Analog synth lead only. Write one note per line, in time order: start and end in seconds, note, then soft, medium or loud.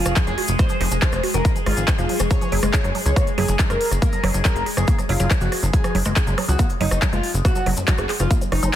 0.00 0.13 F4 medium
0.27 0.45 G#4 loud
0.59 0.83 C5 loud
1.02 1.20 C5 loud
1.34 1.52 A#4 medium
1.66 1.85 F4 loud
1.99 2.17 F4 medium
2.31 2.55 C#5 loud
2.74 2.92 C#5 loud
3.06 3.24 C#5 medium
3.38 3.56 G#4 medium
3.70 3.88 A#4 medium
4.02 4.26 A#4 loud
4.45 4.63 A#4 loud
4.77 4.95 G#4 loud
5.09 5.27 F4 loud
5.41 5.60 F#4 loud
5.73 5.98 G#4 loud
6.16 6.35 G#4 loud
6.48 6.67 F#4 medium
6.81 6.99 D#4 medium
7.13 7.31 F4 medium
7.45 7.69 F#4 loud
7.88 8.06 F#4 loud
8.20 8.38 F4 loud
8.52 8.70 D#4 loud